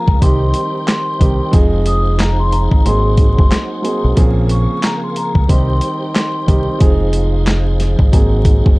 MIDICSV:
0, 0, Header, 1, 6, 480
1, 0, Start_track
1, 0, Tempo, 659341
1, 1116, Time_signature, 4, 2, 24, 8
1, 6399, End_track
2, 0, Start_track
2, 0, Title_t, "Vibraphone"
2, 0, Program_c, 0, 11
2, 0, Note_on_c, 0, 82, 82
2, 132, Note_off_c, 0, 82, 0
2, 162, Note_on_c, 0, 84, 84
2, 520, Note_off_c, 0, 84, 0
2, 545, Note_on_c, 0, 84, 78
2, 1089, Note_off_c, 0, 84, 0
2, 1361, Note_on_c, 0, 87, 81
2, 1575, Note_off_c, 0, 87, 0
2, 1601, Note_on_c, 0, 82, 86
2, 1729, Note_off_c, 0, 82, 0
2, 1744, Note_on_c, 0, 84, 84
2, 1829, Note_off_c, 0, 84, 0
2, 1837, Note_on_c, 0, 82, 81
2, 2052, Note_off_c, 0, 82, 0
2, 2078, Note_on_c, 0, 84, 83
2, 2438, Note_off_c, 0, 84, 0
2, 2458, Note_on_c, 0, 84, 69
2, 3006, Note_off_c, 0, 84, 0
2, 3285, Note_on_c, 0, 85, 85
2, 3497, Note_off_c, 0, 85, 0
2, 3522, Note_on_c, 0, 82, 77
2, 3649, Note_off_c, 0, 82, 0
2, 3667, Note_on_c, 0, 84, 77
2, 3750, Note_off_c, 0, 84, 0
2, 3763, Note_on_c, 0, 82, 81
2, 3976, Note_off_c, 0, 82, 0
2, 3996, Note_on_c, 0, 84, 83
2, 4357, Note_off_c, 0, 84, 0
2, 4376, Note_on_c, 0, 84, 73
2, 4925, Note_off_c, 0, 84, 0
2, 6399, End_track
3, 0, Start_track
3, 0, Title_t, "Tonewheel organ"
3, 0, Program_c, 1, 16
3, 0, Note_on_c, 1, 65, 73
3, 0, Note_on_c, 1, 70, 66
3, 0, Note_on_c, 1, 77, 67
3, 0, Note_on_c, 1, 80, 80
3, 147, Note_off_c, 1, 65, 0
3, 147, Note_off_c, 1, 70, 0
3, 147, Note_off_c, 1, 77, 0
3, 147, Note_off_c, 1, 80, 0
3, 158, Note_on_c, 1, 63, 69
3, 159, Note_on_c, 1, 67, 65
3, 159, Note_on_c, 1, 72, 62
3, 159, Note_on_c, 1, 79, 75
3, 1108, Note_off_c, 1, 67, 0
3, 1108, Note_off_c, 1, 79, 0
3, 1110, Note_on_c, 1, 68, 69
3, 1110, Note_on_c, 1, 77, 82
3, 2058, Note_off_c, 1, 72, 0
3, 2063, Note_off_c, 1, 77, 0
3, 2074, Note_on_c, 1, 72, 62
3, 2074, Note_on_c, 1, 78, 80
3, 3008, Note_off_c, 1, 63, 0
3, 3025, Note_off_c, 1, 72, 0
3, 3025, Note_off_c, 1, 78, 0
3, 3029, Note_on_c, 1, 77, 79
3, 3030, Note_on_c, 1, 49, 74
3, 3030, Note_on_c, 1, 70, 65
3, 3964, Note_off_c, 1, 68, 0
3, 3983, Note_off_c, 1, 49, 0
3, 3983, Note_off_c, 1, 70, 0
3, 3983, Note_off_c, 1, 77, 0
3, 3987, Note_on_c, 1, 63, 73
3, 3987, Note_on_c, 1, 67, 68
3, 3987, Note_on_c, 1, 72, 64
3, 3987, Note_on_c, 1, 79, 80
3, 4942, Note_off_c, 1, 67, 0
3, 4942, Note_off_c, 1, 72, 0
3, 4942, Note_off_c, 1, 79, 0
3, 4958, Note_on_c, 1, 68, 68
3, 4959, Note_on_c, 1, 72, 68
3, 4959, Note_on_c, 1, 77, 81
3, 5908, Note_off_c, 1, 77, 0
3, 5912, Note_on_c, 1, 78, 78
3, 6399, Note_off_c, 1, 63, 0
3, 6399, Note_off_c, 1, 68, 0
3, 6399, Note_off_c, 1, 72, 0
3, 6399, Note_off_c, 1, 78, 0
3, 6399, End_track
4, 0, Start_track
4, 0, Title_t, "Grand piano"
4, 0, Program_c, 2, 0
4, 0, Control_c, 2, 64, 127
4, 0, Note_on_c, 2, 53, 82
4, 0, Note_on_c, 2, 58, 87
4, 0, Note_on_c, 2, 60, 83
4, 0, Note_on_c, 2, 61, 83
4, 0, Note_on_c, 2, 68, 94
4, 77, Note_off_c, 2, 53, 0
4, 80, Note_off_c, 2, 58, 0
4, 82, Note_off_c, 2, 60, 0
4, 85, Note_off_c, 2, 61, 0
4, 88, Note_off_c, 2, 68, 0
4, 144, Note_on_c, 2, 51, 72
4, 149, Note_on_c, 2, 55, 71
4, 155, Note_on_c, 2, 60, 68
4, 160, Note_on_c, 2, 63, 73
4, 165, Control_c, 2, 64, 0
4, 165, Note_on_c, 2, 67, 83
4, 275, Control_c, 2, 64, 127
4, 815, Note_off_c, 2, 51, 0
4, 818, Note_off_c, 2, 55, 0
4, 821, Note_off_c, 2, 60, 0
4, 823, Note_off_c, 2, 63, 0
4, 826, Note_off_c, 2, 67, 0
4, 866, Note_on_c, 2, 51, 75
4, 871, Note_on_c, 2, 55, 66
4, 877, Note_on_c, 2, 60, 66
4, 882, Note_on_c, 2, 63, 59
4, 887, Note_on_c, 2, 67, 79
4, 1093, Note_off_c, 2, 51, 0
4, 1095, Note_off_c, 2, 55, 0
4, 1098, Note_off_c, 2, 60, 0
4, 1099, Note_on_c, 2, 53, 88
4, 1101, Note_off_c, 2, 63, 0
4, 1103, Note_off_c, 2, 67, 0
4, 1104, Note_on_c, 2, 56, 80
4, 1109, Note_on_c, 2, 60, 84
4, 1115, Note_on_c, 2, 63, 87
4, 1120, Note_on_c, 2, 68, 91
4, 1127, Control_c, 2, 64, 0
4, 1236, Control_c, 2, 64, 127
4, 1995, Note_off_c, 2, 53, 0
4, 1997, Note_off_c, 2, 56, 0
4, 2000, Note_off_c, 2, 60, 0
4, 2002, Note_off_c, 2, 63, 0
4, 2005, Note_off_c, 2, 68, 0
4, 2071, Note_on_c, 2, 54, 81
4, 2077, Note_on_c, 2, 58, 68
4, 2082, Note_on_c, 2, 60, 69
4, 2086, Control_c, 2, 64, 0
4, 2088, Note_on_c, 2, 63, 64
4, 2093, Note_on_c, 2, 68, 89
4, 2223, Control_c, 2, 64, 127
4, 2739, Note_off_c, 2, 54, 0
4, 2742, Note_off_c, 2, 58, 0
4, 2744, Note_off_c, 2, 60, 0
4, 2747, Note_off_c, 2, 63, 0
4, 2750, Note_off_c, 2, 68, 0
4, 2781, Note_on_c, 2, 54, 69
4, 2786, Note_on_c, 2, 58, 63
4, 2791, Note_on_c, 2, 60, 62
4, 2797, Note_on_c, 2, 63, 70
4, 2802, Note_on_c, 2, 68, 76
4, 3010, Note_off_c, 2, 54, 0
4, 3013, Note_off_c, 2, 58, 0
4, 3015, Note_off_c, 2, 60, 0
4, 3018, Note_off_c, 2, 63, 0
4, 3021, Note_off_c, 2, 68, 0
4, 3023, Note_on_c, 2, 53, 85
4, 3028, Note_on_c, 2, 58, 88
4, 3034, Note_on_c, 2, 60, 86
4, 3039, Note_on_c, 2, 61, 78
4, 3044, Note_on_c, 2, 68, 97
4, 3046, Control_c, 2, 64, 0
4, 3195, Control_c, 2, 64, 127
4, 3917, Note_off_c, 2, 53, 0
4, 3919, Note_off_c, 2, 58, 0
4, 3922, Note_off_c, 2, 60, 0
4, 3925, Note_off_c, 2, 61, 0
4, 3927, Note_off_c, 2, 68, 0
4, 3983, Note_on_c, 2, 51, 71
4, 3989, Note_on_c, 2, 55, 68
4, 3994, Note_on_c, 2, 60, 70
4, 4000, Note_on_c, 2, 63, 72
4, 4004, Control_c, 2, 64, 0
4, 4004, Note_on_c, 2, 67, 81
4, 4154, Control_c, 2, 64, 127
4, 4655, Note_off_c, 2, 51, 0
4, 4658, Note_off_c, 2, 55, 0
4, 4660, Note_off_c, 2, 60, 0
4, 4663, Note_off_c, 2, 63, 0
4, 4665, Note_off_c, 2, 67, 0
4, 4707, Note_on_c, 2, 51, 76
4, 4712, Note_on_c, 2, 55, 69
4, 4717, Note_on_c, 2, 60, 67
4, 4723, Note_on_c, 2, 63, 61
4, 4728, Note_on_c, 2, 67, 79
4, 4933, Note_off_c, 2, 51, 0
4, 4936, Note_off_c, 2, 55, 0
4, 4938, Note_off_c, 2, 60, 0
4, 4938, Note_on_c, 2, 53, 89
4, 4941, Note_off_c, 2, 63, 0
4, 4944, Note_off_c, 2, 67, 0
4, 4944, Note_on_c, 2, 56, 76
4, 4949, Note_on_c, 2, 60, 81
4, 4954, Note_on_c, 2, 63, 93
4, 4960, Note_on_c, 2, 68, 93
4, 4966, Control_c, 2, 64, 0
4, 5085, Control_c, 2, 64, 127
4, 5834, Note_off_c, 2, 53, 0
4, 5837, Note_off_c, 2, 56, 0
4, 5840, Note_off_c, 2, 60, 0
4, 5842, Note_off_c, 2, 63, 0
4, 5845, Note_off_c, 2, 68, 0
4, 5910, Note_on_c, 2, 54, 77
4, 5916, Note_on_c, 2, 58, 69
4, 5921, Note_on_c, 2, 60, 67
4, 5924, Control_c, 2, 64, 0
4, 5926, Note_on_c, 2, 63, 64
4, 5932, Note_on_c, 2, 68, 86
4, 6045, Control_c, 2, 64, 127
4, 6399, Note_off_c, 2, 54, 0
4, 6399, Note_off_c, 2, 58, 0
4, 6399, Note_off_c, 2, 60, 0
4, 6399, Note_off_c, 2, 63, 0
4, 6399, Note_off_c, 2, 68, 0
4, 6399, End_track
5, 0, Start_track
5, 0, Title_t, "Fingered electric bass"
5, 0, Program_c, 3, 33
5, 56, Note_on_c, 3, 37, 91
5, 146, Note_off_c, 3, 37, 0
5, 160, Note_on_c, 3, 36, 100
5, 378, Note_off_c, 3, 36, 0
5, 880, Note_on_c, 3, 36, 93
5, 1010, Note_off_c, 3, 36, 0
5, 1118, Note_on_c, 3, 29, 103
5, 1952, Note_off_c, 3, 29, 0
5, 1976, Note_on_c, 3, 32, 96
5, 2066, Note_off_c, 3, 32, 0
5, 2078, Note_on_c, 3, 32, 109
5, 2432, Note_off_c, 3, 32, 0
5, 2466, Note_on_c, 3, 30, 89
5, 2551, Note_off_c, 3, 30, 0
5, 2943, Note_on_c, 3, 35, 97
5, 3029, Note_off_c, 3, 35, 0
5, 3038, Note_on_c, 3, 34, 110
5, 3392, Note_off_c, 3, 34, 0
5, 3897, Note_on_c, 3, 37, 93
5, 3986, Note_off_c, 3, 37, 0
5, 4000, Note_on_c, 3, 36, 105
5, 4218, Note_off_c, 3, 36, 0
5, 4719, Note_on_c, 3, 36, 93
5, 4850, Note_off_c, 3, 36, 0
5, 4957, Note_on_c, 3, 29, 100
5, 5792, Note_off_c, 3, 29, 0
5, 5816, Note_on_c, 3, 32, 94
5, 5906, Note_off_c, 3, 32, 0
5, 5920, Note_on_c, 3, 32, 111
5, 6273, Note_off_c, 3, 32, 0
5, 6305, Note_on_c, 3, 30, 92
5, 6390, Note_off_c, 3, 30, 0
5, 6399, End_track
6, 0, Start_track
6, 0, Title_t, "Drums"
6, 55, Note_on_c, 9, 36, 92
6, 128, Note_off_c, 9, 36, 0
6, 159, Note_on_c, 9, 36, 96
6, 160, Note_on_c, 9, 42, 86
6, 232, Note_off_c, 9, 36, 0
6, 232, Note_off_c, 9, 42, 0
6, 391, Note_on_c, 9, 42, 80
6, 464, Note_off_c, 9, 42, 0
6, 639, Note_on_c, 9, 42, 96
6, 640, Note_on_c, 9, 39, 88
6, 643, Note_on_c, 9, 38, 112
6, 712, Note_off_c, 9, 42, 0
6, 713, Note_off_c, 9, 39, 0
6, 716, Note_off_c, 9, 38, 0
6, 879, Note_on_c, 9, 36, 84
6, 880, Note_on_c, 9, 42, 78
6, 952, Note_off_c, 9, 36, 0
6, 953, Note_off_c, 9, 42, 0
6, 1114, Note_on_c, 9, 42, 90
6, 1117, Note_on_c, 9, 36, 120
6, 1187, Note_off_c, 9, 42, 0
6, 1190, Note_off_c, 9, 36, 0
6, 1352, Note_on_c, 9, 42, 85
6, 1425, Note_off_c, 9, 42, 0
6, 1597, Note_on_c, 9, 42, 88
6, 1599, Note_on_c, 9, 39, 100
6, 1602, Note_on_c, 9, 38, 122
6, 1670, Note_off_c, 9, 42, 0
6, 1672, Note_off_c, 9, 39, 0
6, 1675, Note_off_c, 9, 38, 0
6, 1837, Note_on_c, 9, 42, 79
6, 1910, Note_off_c, 9, 42, 0
6, 1976, Note_on_c, 9, 36, 93
6, 2048, Note_off_c, 9, 36, 0
6, 2080, Note_on_c, 9, 42, 90
6, 2153, Note_off_c, 9, 42, 0
6, 2311, Note_on_c, 9, 42, 80
6, 2313, Note_on_c, 9, 36, 102
6, 2384, Note_off_c, 9, 42, 0
6, 2385, Note_off_c, 9, 36, 0
6, 2464, Note_on_c, 9, 36, 105
6, 2537, Note_off_c, 9, 36, 0
6, 2559, Note_on_c, 9, 42, 98
6, 2560, Note_on_c, 9, 39, 86
6, 2563, Note_on_c, 9, 38, 110
6, 2632, Note_off_c, 9, 42, 0
6, 2633, Note_off_c, 9, 39, 0
6, 2636, Note_off_c, 9, 38, 0
6, 2800, Note_on_c, 9, 42, 75
6, 2873, Note_off_c, 9, 42, 0
6, 3034, Note_on_c, 9, 42, 93
6, 3037, Note_on_c, 9, 36, 123
6, 3107, Note_off_c, 9, 42, 0
6, 3110, Note_off_c, 9, 36, 0
6, 3271, Note_on_c, 9, 42, 85
6, 3344, Note_off_c, 9, 42, 0
6, 3517, Note_on_c, 9, 42, 85
6, 3519, Note_on_c, 9, 39, 100
6, 3522, Note_on_c, 9, 38, 123
6, 3590, Note_off_c, 9, 42, 0
6, 3592, Note_off_c, 9, 39, 0
6, 3594, Note_off_c, 9, 38, 0
6, 3757, Note_on_c, 9, 42, 75
6, 3829, Note_off_c, 9, 42, 0
6, 3895, Note_on_c, 9, 36, 93
6, 3968, Note_off_c, 9, 36, 0
6, 3999, Note_on_c, 9, 36, 97
6, 4000, Note_on_c, 9, 42, 89
6, 4072, Note_off_c, 9, 36, 0
6, 4073, Note_off_c, 9, 42, 0
6, 4231, Note_on_c, 9, 42, 80
6, 4303, Note_off_c, 9, 42, 0
6, 4480, Note_on_c, 9, 39, 90
6, 4480, Note_on_c, 9, 42, 95
6, 4483, Note_on_c, 9, 38, 108
6, 4552, Note_off_c, 9, 42, 0
6, 4553, Note_off_c, 9, 39, 0
6, 4556, Note_off_c, 9, 38, 0
6, 4719, Note_on_c, 9, 36, 89
6, 4719, Note_on_c, 9, 42, 76
6, 4791, Note_off_c, 9, 36, 0
6, 4792, Note_off_c, 9, 42, 0
6, 4954, Note_on_c, 9, 42, 94
6, 4956, Note_on_c, 9, 36, 121
6, 5027, Note_off_c, 9, 42, 0
6, 5029, Note_off_c, 9, 36, 0
6, 5191, Note_on_c, 9, 42, 86
6, 5263, Note_off_c, 9, 42, 0
6, 5436, Note_on_c, 9, 42, 88
6, 5438, Note_on_c, 9, 39, 99
6, 5441, Note_on_c, 9, 38, 120
6, 5509, Note_off_c, 9, 42, 0
6, 5511, Note_off_c, 9, 39, 0
6, 5514, Note_off_c, 9, 38, 0
6, 5677, Note_on_c, 9, 42, 77
6, 5680, Note_on_c, 9, 38, 38
6, 5749, Note_off_c, 9, 42, 0
6, 5753, Note_off_c, 9, 38, 0
6, 5815, Note_on_c, 9, 36, 94
6, 5888, Note_off_c, 9, 36, 0
6, 5919, Note_on_c, 9, 36, 94
6, 5920, Note_on_c, 9, 42, 87
6, 5992, Note_off_c, 9, 36, 0
6, 5992, Note_off_c, 9, 42, 0
6, 6151, Note_on_c, 9, 42, 82
6, 6152, Note_on_c, 9, 36, 102
6, 6224, Note_off_c, 9, 42, 0
6, 6225, Note_off_c, 9, 36, 0
6, 6304, Note_on_c, 9, 36, 107
6, 6377, Note_off_c, 9, 36, 0
6, 6399, End_track
0, 0, End_of_file